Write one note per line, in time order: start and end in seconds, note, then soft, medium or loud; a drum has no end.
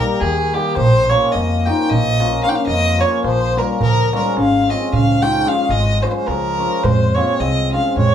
0.00 0.24 G3 medium
0.00 0.51 G3 medium
0.00 0.16 A#3 medium
0.00 0.17 D#4 medium
0.00 0.16 G4 medium
0.00 0.22 A#4 medium
0.20 0.55 D#2 medium
0.20 0.55 D#3 medium
0.20 0.55 G#4 medium
0.20 darbuka tek medium
0.53 0.79 D#3 medium
0.53 0.82 G3 medium
0.53 0.73 A#3 medium
0.53 0.73 D#4 medium
0.53 0.76 G4 medium
0.53 0.73 G4 medium
0.53 darbuka tek medium
0.66 darbuka tek soft
0.77 1.11 A#1 loud
0.77 1.11 C5 loud
0.77 darbuka dum loud
0.81 1.16 F3 medium
1.09 1.64 F3 medium
1.09 1.30 A#3 medium
1.09 1.30 C#4 medium
1.09 1.31 F4 medium
1.09 1.33 C#5 loud
1.09 darbuka tek medium
1.14 1.37 A#3 medium
1.32 1.69 F2 medium
1.32 1.67 D#5 medium
1.32 darbuka tek medium
1.37 1.71 A#3 loud
1.65 2.18 F3 medium
1.65 1.86 A#3 medium
1.65 1.86 C#4 medium
1.65 1.86 F4 medium
1.65 1.91 G5 medium
1.65 darbuka tek medium
1.70 1.96 D#4 medium
1.90 2.37 A#1 medium
1.90 2.43 D#5 loud
1.90 darbuka dum medium
1.94 2.45 A#3 medium
2.07 darbuka tek soft
2.19 2.41 F3 medium
2.19 2.39 A#3 medium
2.19 2.39 C#4 medium
2.19 2.39 F4 medium
2.19 darbuka tek medium
2.43 2.97 F3 medium
2.43 2.63 A#3 medium
2.43 2.63 C#4 medium
2.43 2.51 C#4 medium
2.43 2.63 F4 medium
2.43 2.50 F5 medium
2.43 darbuka tek medium
2.48 2.59 D#4 medium
2.48 2.57 G5 medium
2.55 2.68 C#4 medium
2.55 2.66 F5 medium
2.55 darbuka tek soft
2.66 3.01 F2 medium
2.66 3.01 A#3 medium
2.66 3.02 D#5 loud
2.66 darbuka tek medium
2.98 3.54 F3 medium
2.98 3.19 A#3 medium
2.98 3.25 A#3 medium
2.98 3.19 C#4 medium
2.98 3.20 F4 medium
2.98 3.24 C#5 loud
2.98 darbuka tek medium
3.24 3.58 A#1 medium
3.24 3.61 F3 medium
3.24 3.60 C5 loud
3.24 darbuka tek medium
3.41 darbuka tek soft
3.55 3.86 F3 medium
3.55 3.76 A#3 medium
3.55 3.76 C#4 medium
3.55 3.76 F4 medium
3.55 3.82 A#4 medium
3.55 darbuka tek medium
3.59 3.81 G3 medium
3.81 4.15 C#2 medium
3.81 4.11 F3 medium
3.81 4.11 A#4 loud
3.81 darbuka dum medium
4.13 4.67 F3 medium
4.13 4.36 G3 medium
4.13 4.67 G#3 medium
4.13 4.33 C#4 medium
4.13 4.34 F4 medium
4.13 4.37 A#4 medium
4.13 darbuka tek medium
4.37 4.71 G#1 medium
4.37 4.72 C#4 medium
4.37 4.72 F5 medium
4.37 darbuka tek medium
4.68 5.20 F3 medium
4.68 5.20 G#3 medium
4.68 4.93 C4 medium
4.68 4.89 C#4 medium
4.68 4.90 F4 medium
4.68 4.93 D#5 medium
4.68 darbuka tek medium
4.93 5.39 C#2 medium
4.93 5.25 C#4 medium
4.93 5.24 F5 loud
4.93 darbuka dum medium
5.09 darbuka tek soft
5.21 5.43 F3 medium
5.21 5.44 G#3 medium
5.21 5.42 C#4 medium
5.21 5.49 D#4 medium
5.21 5.42 F4 medium
5.21 5.50 G5 loud
5.21 darbuka tek medium
5.45 5.99 F3 medium
5.45 6.00 G#3 medium
5.45 5.66 C#4 medium
5.45 5.72 C#4 medium
5.45 5.66 F4 medium
5.45 5.72 F5 medium
5.45 darbuka tek medium
5.57 darbuka tek soft
5.69 6.04 G#1 medium
5.69 6.03 G#3 medium
5.69 6.04 D#5 loud
5.69 darbuka tek medium
5.87 darbuka tek soft
6.00 6.57 F3 medium
6.00 6.57 G#3 medium
6.00 6.09 G#3 medium
6.00 6.22 C#4 medium
6.00 6.22 F4 medium
6.00 6.08 C5 medium
6.00 darbuka tek medium
6.08 6.15 G#3 medium
6.08 6.15 C5 medium
6.16 6.30 G#3 medium
6.16 6.28 C5 medium
6.27 6.62 C#2 medium
6.27 6.86 F3 medium
6.27 6.85 A#4 loud
6.27 darbuka tek medium
6.43 darbuka tek soft
6.58 6.89 F3 medium
6.58 6.89 G#3 medium
6.58 6.79 C#4 medium
6.58 6.80 F4 medium
6.84 7.18 F2 loud
6.84 7.18 G#3 medium
6.84 7.16 C5 loud
6.84 darbuka dum loud
7.01 darbuka tek soft
7.15 7.70 F3 medium
7.15 7.70 G#3 medium
7.15 7.44 A#3 medium
7.15 7.37 C4 medium
7.15 7.37 F4 medium
7.15 7.41 C#5 medium
7.15 darbuka tek medium
7.40 7.74 C2 medium
7.40 7.72 C4 medium
7.40 7.72 D#5 medium
7.40 darbuka tek medium
7.57 darbuka tek soft
7.71 8.15 F3 medium
7.71 8.15 G#3 medium
7.71 7.93 C4 medium
7.71 7.96 C#4 medium
7.71 7.93 F4 medium
7.71 7.96 F5 medium
7.71 darbuka tek medium
7.86 darbuka tek soft
7.96 8.15 F2 medium
7.96 8.15 G#3 medium
7.96 8.15 C#5 loud
7.96 darbuka dum medium